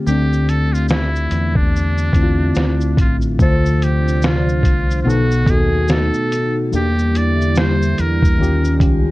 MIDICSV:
0, 0, Header, 1, 6, 480
1, 0, Start_track
1, 0, Key_signature, -1, "minor"
1, 0, Tempo, 833333
1, 35, Time_signature, 4, 2, 24, 8
1, 5248, End_track
2, 0, Start_track
2, 0, Title_t, "Muted trumpet"
2, 0, Program_c, 0, 59
2, 42, Note_on_c, 0, 67, 99
2, 284, Note_on_c, 0, 69, 99
2, 292, Note_off_c, 0, 67, 0
2, 421, Note_on_c, 0, 65, 94
2, 430, Note_off_c, 0, 69, 0
2, 511, Note_off_c, 0, 65, 0
2, 514, Note_on_c, 0, 64, 96
2, 900, Note_on_c, 0, 62, 94
2, 909, Note_off_c, 0, 64, 0
2, 1717, Note_off_c, 0, 62, 0
2, 1731, Note_on_c, 0, 65, 73
2, 1823, Note_off_c, 0, 65, 0
2, 1971, Note_on_c, 0, 69, 94
2, 2209, Note_on_c, 0, 67, 88
2, 2218, Note_off_c, 0, 69, 0
2, 2453, Note_on_c, 0, 65, 82
2, 2462, Note_off_c, 0, 67, 0
2, 2891, Note_off_c, 0, 65, 0
2, 2894, Note_on_c, 0, 65, 76
2, 2933, Note_on_c, 0, 66, 95
2, 2942, Note_off_c, 0, 65, 0
2, 3170, Note_on_c, 0, 68, 88
2, 3179, Note_off_c, 0, 66, 0
2, 3409, Note_on_c, 0, 69, 95
2, 3418, Note_off_c, 0, 68, 0
2, 3783, Note_off_c, 0, 69, 0
2, 3892, Note_on_c, 0, 67, 99
2, 4131, Note_on_c, 0, 74, 101
2, 4140, Note_off_c, 0, 67, 0
2, 4366, Note_on_c, 0, 72, 99
2, 4375, Note_off_c, 0, 74, 0
2, 4610, Note_on_c, 0, 70, 94
2, 4618, Note_off_c, 0, 72, 0
2, 5082, Note_off_c, 0, 70, 0
2, 5248, End_track
3, 0, Start_track
3, 0, Title_t, "Synth keys"
3, 0, Program_c, 1, 88
3, 0, Control_c, 1, 64, 127
3, 0, Note_on_c, 1, 50, 69
3, 0, Note_on_c, 1, 57, 59
3, 0, Note_on_c, 1, 60, 57
3, 0, Note_on_c, 1, 67, 72
3, 37, Note_off_c, 1, 50, 0
3, 37, Note_on_c, 1, 50, 70
3, 41, Note_off_c, 1, 57, 0
3, 41, Note_on_c, 1, 57, 66
3, 47, Note_off_c, 1, 60, 0
3, 47, Note_on_c, 1, 60, 67
3, 55, Note_on_c, 1, 62, 82
3, 722, Note_off_c, 1, 50, 0
3, 724, Note_off_c, 1, 57, 0
3, 727, Note_off_c, 1, 60, 0
3, 731, Note_off_c, 1, 62, 0
3, 1227, Note_on_c, 1, 50, 65
3, 1232, Note_on_c, 1, 57, 61
3, 1240, Note_on_c, 1, 60, 62
3, 1243, Note_on_c, 1, 64, 55
3, 1281, Note_on_c, 1, 65, 77
3, 1283, Note_off_c, 1, 64, 0
3, 1745, Note_off_c, 1, 50, 0
3, 1748, Note_off_c, 1, 57, 0
3, 1752, Note_off_c, 1, 60, 0
3, 1773, Note_off_c, 1, 65, 0
3, 1953, Note_on_c, 1, 50, 73
3, 1957, Note_on_c, 1, 57, 67
3, 1960, Control_c, 1, 64, 0
3, 1964, Note_off_c, 1, 67, 0
3, 1965, Note_on_c, 1, 65, 70
3, 1971, Note_on_c, 1, 72, 77
3, 2076, Control_c, 1, 64, 127
3, 2640, Note_off_c, 1, 50, 0
3, 2642, Note_off_c, 1, 57, 0
3, 2646, Note_off_c, 1, 65, 0
3, 2649, Note_off_c, 1, 72, 0
3, 2905, Note_on_c, 1, 47, 79
3, 2910, Note_on_c, 1, 59, 77
3, 2916, Note_on_c, 1, 63, 68
3, 2921, Note_on_c, 1, 69, 89
3, 2922, Control_c, 1, 64, 0
3, 3025, Control_c, 1, 64, 127
3, 3110, Note_off_c, 1, 47, 0
3, 3113, Note_off_c, 1, 59, 0
3, 3116, Note_off_c, 1, 63, 0
3, 3118, Note_off_c, 1, 69, 0
3, 3154, Note_on_c, 1, 47, 71
3, 3157, Note_on_c, 1, 59, 64
3, 3166, Note_on_c, 1, 63, 66
3, 3171, Note_on_c, 1, 66, 76
3, 3669, Note_off_c, 1, 47, 0
3, 3671, Note_off_c, 1, 59, 0
3, 3675, Note_off_c, 1, 63, 0
3, 3678, Note_off_c, 1, 66, 0
3, 3867, Note_on_c, 1, 52, 71
3, 3872, Note_on_c, 1, 58, 77
3, 3879, Note_on_c, 1, 62, 62
3, 3881, Control_c, 1, 64, 0
3, 3884, Note_on_c, 1, 67, 78
3, 3996, Control_c, 1, 64, 127
3, 4557, Note_off_c, 1, 52, 0
3, 4560, Note_off_c, 1, 58, 0
3, 4563, Note_off_c, 1, 62, 0
3, 4566, Note_off_c, 1, 67, 0
3, 4829, Note_on_c, 1, 51, 80
3, 4837, Note_on_c, 1, 61, 72
3, 4842, Control_c, 1, 64, 0
3, 4842, Note_on_c, 1, 65, 70
3, 4849, Note_on_c, 1, 67, 85
3, 4937, Control_c, 1, 64, 127
3, 5033, Note_off_c, 1, 51, 0
3, 5036, Note_off_c, 1, 61, 0
3, 5039, Note_off_c, 1, 65, 0
3, 5042, Note_off_c, 1, 67, 0
3, 5064, Note_on_c, 1, 51, 74
3, 5071, Note_on_c, 1, 61, 67
3, 5075, Note_on_c, 1, 65, 65
3, 5082, Note_on_c, 1, 67, 78
3, 5248, Note_off_c, 1, 51, 0
3, 5248, Note_off_c, 1, 61, 0
3, 5248, Note_off_c, 1, 65, 0
3, 5248, Note_off_c, 1, 67, 0
3, 5248, End_track
4, 0, Start_track
4, 0, Title_t, "Analog synth pad"
4, 0, Program_c, 2, 89
4, 1951, Note_on_c, 2, 48, 75
4, 1954, Note_on_c, 2, 53, 72
4, 1954, Note_on_c, 2, 62, 84
4, 2903, Note_off_c, 2, 48, 0
4, 2905, Note_off_c, 2, 53, 0
4, 2905, Note_off_c, 2, 62, 0
4, 2912, Note_on_c, 2, 57, 71
4, 2912, Note_on_c, 2, 63, 90
4, 2913, Note_on_c, 2, 47, 83
4, 3864, Note_off_c, 2, 47, 0
4, 3864, Note_off_c, 2, 57, 0
4, 3864, Note_off_c, 2, 63, 0
4, 3868, Note_on_c, 2, 50, 73
4, 3869, Note_on_c, 2, 55, 63
4, 3871, Note_on_c, 2, 64, 76
4, 4822, Note_off_c, 2, 50, 0
4, 4822, Note_off_c, 2, 55, 0
4, 4823, Note_off_c, 2, 64, 0
4, 4826, Note_on_c, 2, 61, 78
4, 4826, Note_on_c, 2, 65, 93
4, 4830, Note_on_c, 2, 55, 76
4, 5248, Note_off_c, 2, 55, 0
4, 5248, Note_off_c, 2, 61, 0
4, 5248, Note_off_c, 2, 65, 0
4, 5248, End_track
5, 0, Start_track
5, 0, Title_t, "Fingered electric bass"
5, 0, Program_c, 3, 33
5, 39, Note_on_c, 3, 38, 94
5, 734, Note_off_c, 3, 38, 0
5, 758, Note_on_c, 3, 40, 80
5, 1213, Note_off_c, 3, 40, 0
5, 1233, Note_on_c, 3, 40, 80
5, 1457, Note_off_c, 3, 40, 0
5, 1478, Note_on_c, 3, 38, 90
5, 1700, Note_off_c, 3, 38, 0
5, 1716, Note_on_c, 3, 33, 80
5, 1939, Note_off_c, 3, 33, 0
5, 1958, Note_on_c, 3, 38, 97
5, 2653, Note_off_c, 3, 38, 0
5, 2671, Note_on_c, 3, 36, 82
5, 2897, Note_off_c, 3, 36, 0
5, 2920, Note_on_c, 3, 35, 95
5, 3150, Note_off_c, 3, 35, 0
5, 3150, Note_on_c, 3, 39, 81
5, 3511, Note_off_c, 3, 39, 0
5, 3878, Note_on_c, 3, 40, 102
5, 4573, Note_off_c, 3, 40, 0
5, 4603, Note_on_c, 3, 40, 88
5, 4823, Note_off_c, 3, 40, 0
5, 4844, Note_on_c, 3, 39, 101
5, 5071, Note_off_c, 3, 39, 0
5, 5071, Note_on_c, 3, 37, 92
5, 5248, Note_off_c, 3, 37, 0
5, 5248, End_track
6, 0, Start_track
6, 0, Title_t, "Drums"
6, 40, Note_on_c, 9, 82, 65
6, 97, Note_off_c, 9, 82, 0
6, 189, Note_on_c, 9, 82, 44
6, 246, Note_off_c, 9, 82, 0
6, 281, Note_on_c, 9, 42, 70
6, 281, Note_on_c, 9, 82, 50
6, 338, Note_off_c, 9, 42, 0
6, 338, Note_off_c, 9, 82, 0
6, 430, Note_on_c, 9, 82, 46
6, 488, Note_off_c, 9, 82, 0
6, 509, Note_on_c, 9, 82, 66
6, 522, Note_on_c, 9, 38, 116
6, 567, Note_off_c, 9, 82, 0
6, 579, Note_off_c, 9, 38, 0
6, 665, Note_on_c, 9, 82, 45
6, 723, Note_off_c, 9, 82, 0
6, 755, Note_on_c, 9, 42, 62
6, 755, Note_on_c, 9, 82, 46
6, 812, Note_off_c, 9, 42, 0
6, 812, Note_off_c, 9, 82, 0
6, 896, Note_on_c, 9, 36, 94
6, 953, Note_off_c, 9, 36, 0
6, 1015, Note_on_c, 9, 82, 55
6, 1073, Note_off_c, 9, 82, 0
6, 1140, Note_on_c, 9, 82, 47
6, 1198, Note_off_c, 9, 82, 0
6, 1228, Note_on_c, 9, 36, 86
6, 1235, Note_on_c, 9, 42, 63
6, 1235, Note_on_c, 9, 82, 45
6, 1286, Note_off_c, 9, 36, 0
6, 1293, Note_off_c, 9, 42, 0
6, 1293, Note_off_c, 9, 82, 0
6, 1469, Note_on_c, 9, 82, 61
6, 1479, Note_on_c, 9, 38, 107
6, 1526, Note_off_c, 9, 82, 0
6, 1536, Note_off_c, 9, 38, 0
6, 1619, Note_on_c, 9, 82, 46
6, 1676, Note_off_c, 9, 82, 0
6, 1713, Note_on_c, 9, 36, 93
6, 1719, Note_on_c, 9, 42, 68
6, 1719, Note_on_c, 9, 82, 47
6, 1771, Note_off_c, 9, 36, 0
6, 1777, Note_off_c, 9, 42, 0
6, 1777, Note_off_c, 9, 82, 0
6, 1853, Note_on_c, 9, 82, 45
6, 1911, Note_off_c, 9, 82, 0
6, 1954, Note_on_c, 9, 36, 114
6, 1956, Note_on_c, 9, 82, 68
6, 2012, Note_off_c, 9, 36, 0
6, 2013, Note_off_c, 9, 82, 0
6, 2107, Note_on_c, 9, 82, 45
6, 2164, Note_off_c, 9, 82, 0
6, 2202, Note_on_c, 9, 42, 72
6, 2202, Note_on_c, 9, 82, 54
6, 2260, Note_off_c, 9, 42, 0
6, 2260, Note_off_c, 9, 82, 0
6, 2351, Note_on_c, 9, 82, 46
6, 2409, Note_off_c, 9, 82, 0
6, 2431, Note_on_c, 9, 82, 71
6, 2444, Note_on_c, 9, 38, 112
6, 2489, Note_off_c, 9, 82, 0
6, 2501, Note_off_c, 9, 38, 0
6, 2586, Note_on_c, 9, 82, 44
6, 2644, Note_off_c, 9, 82, 0
6, 2669, Note_on_c, 9, 36, 84
6, 2679, Note_on_c, 9, 42, 63
6, 2679, Note_on_c, 9, 82, 43
6, 2726, Note_off_c, 9, 36, 0
6, 2736, Note_off_c, 9, 42, 0
6, 2736, Note_off_c, 9, 82, 0
6, 2829, Note_on_c, 9, 82, 59
6, 2886, Note_off_c, 9, 82, 0
6, 2936, Note_on_c, 9, 82, 62
6, 2994, Note_off_c, 9, 82, 0
6, 3061, Note_on_c, 9, 82, 50
6, 3119, Note_off_c, 9, 82, 0
6, 3148, Note_on_c, 9, 36, 89
6, 3154, Note_on_c, 9, 42, 59
6, 3154, Note_on_c, 9, 82, 46
6, 3205, Note_off_c, 9, 36, 0
6, 3211, Note_off_c, 9, 42, 0
6, 3211, Note_off_c, 9, 82, 0
6, 3387, Note_on_c, 9, 82, 65
6, 3397, Note_on_c, 9, 38, 114
6, 3444, Note_off_c, 9, 82, 0
6, 3455, Note_off_c, 9, 38, 0
6, 3534, Note_on_c, 9, 82, 46
6, 3592, Note_off_c, 9, 82, 0
6, 3640, Note_on_c, 9, 42, 66
6, 3640, Note_on_c, 9, 82, 54
6, 3698, Note_off_c, 9, 42, 0
6, 3698, Note_off_c, 9, 82, 0
6, 3874, Note_on_c, 9, 82, 67
6, 3932, Note_off_c, 9, 82, 0
6, 4024, Note_on_c, 9, 82, 47
6, 4082, Note_off_c, 9, 82, 0
6, 4119, Note_on_c, 9, 42, 71
6, 4119, Note_on_c, 9, 82, 49
6, 4177, Note_off_c, 9, 42, 0
6, 4177, Note_off_c, 9, 82, 0
6, 4269, Note_on_c, 9, 82, 45
6, 4327, Note_off_c, 9, 82, 0
6, 4350, Note_on_c, 9, 82, 72
6, 4362, Note_on_c, 9, 38, 117
6, 4407, Note_off_c, 9, 82, 0
6, 4420, Note_off_c, 9, 38, 0
6, 4505, Note_on_c, 9, 82, 47
6, 4563, Note_off_c, 9, 82, 0
6, 4597, Note_on_c, 9, 42, 63
6, 4597, Note_on_c, 9, 82, 45
6, 4655, Note_off_c, 9, 42, 0
6, 4655, Note_off_c, 9, 82, 0
6, 4738, Note_on_c, 9, 36, 94
6, 4750, Note_on_c, 9, 82, 56
6, 4795, Note_off_c, 9, 36, 0
6, 4808, Note_off_c, 9, 82, 0
6, 4857, Note_on_c, 9, 82, 61
6, 4914, Note_off_c, 9, 82, 0
6, 4980, Note_on_c, 9, 82, 53
6, 5037, Note_off_c, 9, 82, 0
6, 5070, Note_on_c, 9, 36, 88
6, 5075, Note_on_c, 9, 42, 66
6, 5075, Note_on_c, 9, 82, 44
6, 5127, Note_off_c, 9, 36, 0
6, 5132, Note_off_c, 9, 42, 0
6, 5132, Note_off_c, 9, 82, 0
6, 5248, End_track
0, 0, End_of_file